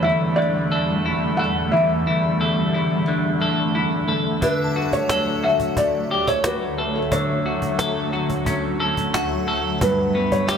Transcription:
0.00 4.38 E2 medium
0.00 9.78 D3 medium
0.00 1.72 E3 medium
0.00 4.38 G3 medium
0.00 4.38 A3 medium
0.00 0.71 A4 soft
0.00 0.38 E5 medium
0.04 1.04 E4 medium
0.36 3.07 D3 medium
0.36 1.41 D5 medium
0.72 1.39 A4 medium
1.06 2.06 E4 soft
1.37 2.40 A4 medium
1.37 1.73 F#5 medium
1.72 4.42 E3 medium
1.72 3.03 E5 medium
2.07 2.73 E4 soft
2.41 3.41 A4 medium
2.74 3.74 E4 medium
3.08 4.42 D3 medium
3.42 4.08 A4 medium
3.75 4.49 E4 medium
4.08 5.09 A4 medium
4.42 9.77 D2 medium
4.42 7.11 D3 medium
4.42 9.77 F#3 medium
4.42 9.78 A3 medium
4.42 4.95 B4 medium
4.42 6.28 E5 medium
4.42 cajon bass medium
4.64 6.47 A5 soft
4.76 5.42 F#4 medium
4.93 5.45 C#5 loud
4.93 cajon bass medium
5.09 6.11 A4 medium
5.09 cajon slap medium
5.44 6.43 F#4 medium
5.44 5.78 E5 medium
5.60 cajon bass medium
5.77 6.29 D5 medium
5.77 cajon bass medium
6.11 6.28 G4 medium
6.27 6.77 A4 soft
6.27 6.45 C#5 medium
6.27 cajon bass medium
6.44 7.45 F#4 medium
6.44 6.97 B4 medium
6.44 cajon slap loud
6.78 7.79 A4 medium
6.95 7.11 A4 medium
7.12 10.58 D3 medium
7.12 8.09 C#5 medium
7.12 cajon bass loud
7.46 8.12 F#4 medium
7.62 cajon bass medium
7.79 8.80 A4 medium
7.79 cajon slap medium
8.13 9.13 F#4 medium
8.30 cajon bass medium
8.46 9.88 C#4 medium
8.46 cajon bass medium
8.80 9.47 A4 medium
8.97 cajon bass medium
9.14 9.88 F#4 medium
9.14 10.11 F#5 soft
9.14 cajon slap loud
9.48 10.18 A4 medium
9.81 10.58 G2 medium
9.81 10.58 E3 medium
9.81 10.58 A3 medium
9.81 10.58 B3 medium
9.81 10.34 B4 medium
9.81 cajon bass loud
10.15 10.58 B3 medium
10.32 10.58 C#5 medium
10.32 cajon bass medium
10.48 10.58 G4 medium
10.48 10.58 E5 medium
10.48 cajon slap medium

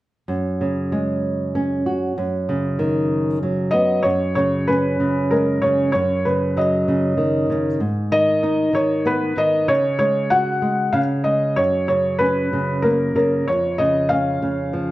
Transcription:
0.28 2.12 F#2 medium
0.61 1.82 C#3 soft
0.92 2.13 G#3 soft
1.55 2.15 C#4 soft
1.86 2.16 F#4 soft
2.18 4.02 F#2 medium
2.49 3.70 C#3 soft
2.79 3.42 D#3 medium
3.43 4.04 F#3 soft
3.71 4.04 B3 soft
3.71 4.05 D#5 medium
4.03 5.89 F#2 medium
4.03 4.34 C#5 medium
4.35 4.99 C#3 soft
4.35 4.69 C#5 medium
4.67 5.90 C#4 soft
4.67 5.33 B4 medium
5.00 5.62 C#3 soft
5.31 5.92 G#3 soft
5.31 5.63 A#4 medium
5.62 5.93 C#3 soft
5.62 5.91 C#5 medium
5.92 7.77 F#2 medium
5.92 6.25 C#5 medium
6.25 6.87 C#3 soft
6.25 6.57 B4 medium
6.57 7.17 F#3 soft
6.57 7.46 D#5 medium
6.88 7.49 C#3 soft
7.17 7.78 D#3 medium
7.50 7.80 C#3 soft
7.80 9.64 G#2 medium
8.12 8.72 D#3 soft
8.12 8.70 D#5 medium
8.43 9.64 D#4 medium
8.73 9.36 D#3 soft
8.73 9.07 C#5 medium
9.05 9.66 B3 medium
9.05 9.35 B4 medium
9.37 9.67 D#3 soft
9.37 9.70 D#5 medium
9.68 10.90 C#3 medium
9.68 9.97 C#5 medium
9.99 10.61 G#3 soft
9.99 10.32 C#5 medium
10.30 10.93 F#4 medium
10.30 10.96 F#5 medium
10.62 10.93 G#3 soft
10.93 11.55 C#3 medium
10.93 11.00 F5 medium
11.24 11.56 G#3 soft
11.24 11.58 D#5 medium
11.56 13.43 F#2 medium
11.56 11.87 C#5 medium
11.88 12.52 C#3 soft
11.88 12.21 C#5 medium
12.19 13.43 C#4 medium
12.19 12.85 B4 medium
12.53 13.14 C#3 soft
12.82 13.45 A#3 soft
12.82 13.14 A#4 medium
13.15 13.46 C#3 soft
13.15 13.48 A#4 medium
13.48 14.91 F2 medium
13.48 13.80 C#5 medium
13.78 14.41 C#3 soft
13.78 14.11 D#5 medium
14.09 14.91 C#4 soft
14.09 14.91 F5 medium
14.42 14.91 C#3 soft
14.73 14.91 F3 soft

